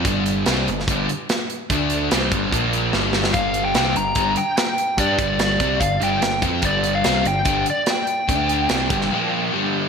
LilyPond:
<<
  \new Staff \with { instrumentName = "Lead electric guitar" } { \time 4/4 \key g \minor \tempo 4 = 146 r1 | r1 | f''8. g''8. bes''4 g''8 g''4 | d''4 d''4 f''8 g''4 r8 |
d''8. f''8. g''4 d''8 g''4~ | g''2. r4 | }
  \new Staff \with { instrumentName = "Distorted electric guitar" } { \clef bass \time 4/4 \key g \minor <g, d g>4 <c g c'>8 <g, d>8 <g, d g>8 r4. | <d a d'>4 <c g c'>8 <g, d g>8 <bes, f bes>4 <g, d g>4 | <g, d g>4 <c g c'>8 <g, d>8 <g, d g>8 r4. | <g d' g'>8 <g, d g>4 <c g c'>8 <g, d>8 <g, d g>8 <g, d>8 <f c' f'>8 |
<g, d g>4 <c g c'>8 <g, d>8 <g, d g>8 r4. | <d a d'>4 <c g c'>8 <g, d g>8 <bes, f bes>4 <g, d g>4 | }
  \new Staff \with { instrumentName = "Overdriven electric guitar" } { \clef bass \time 4/4 \key g \minor <g, d g>4 <c g c'>8 <g, d>8 <g, d g>8 r4. | <d a d'>4 <c g c'>8 <g, d g>8 <bes, f bes>4 <g, d g>4 | <g, d g>4 <c g c'>8 <g, d>8 <g, d g>8 r4. | <g d' g'>8 <g, d g>4 <c g c'>8 <g, d>8 <g, d g>8 <g, d>8 <f c' f'>8 |
<g, d g>4 <c g c'>8 <g, d>8 <g, d g>8 r4. | <d a d'>4 <c g c'>8 <g, d g>8 <bes, f bes>4 <g, d g>4 | }
  \new Staff \with { instrumentName = "Picked electric bass" } { \clef bass \time 4/4 \key g \minor g,,4 c,8 g,,8 g,,8 r4. | d,4 c,8 g,,8 bes,,4 g,,4 | g,,4 c,8 g,,8 g,,8 r4. | g,8 g,,4 c,8 g,,8 g,,8 g,,8 f,8 |
g,,4 c,8 g,,8 g,,8 r4. | d,4 c,8 g,,8 r2 | }
  \new DrumStaff \with { instrumentName = "Drums" } \drummode { \time 4/4 <hh bd>8 hh8 <hh sn>8 hh16 sn16 <hh bd>8 hh8 <hh sn>8 hh8 | <hh bd>8 hh8 <hh sn>8 <hh bd>8 <hh bd>8 hh8 sn8 sn16 sn16 | <hh bd>8 hh8 <hh sn>8 hh8 <hh bd>8 hh8 <hh sn>8 hh8 | <hh bd>8 <hh bd>8 <hh sn>8 <hh bd>8 <hh bd>8 hh8 <hh sn>8 <hh bd>8 |
<hh bd>8 hh8 <hh sn>8 hh8 <hh bd>8 hh8 <hh sn>8 hh8 | <hh bd>8 hh8 <hh sn>8 <hh bd>16 sn16 r4 r4 | }
>>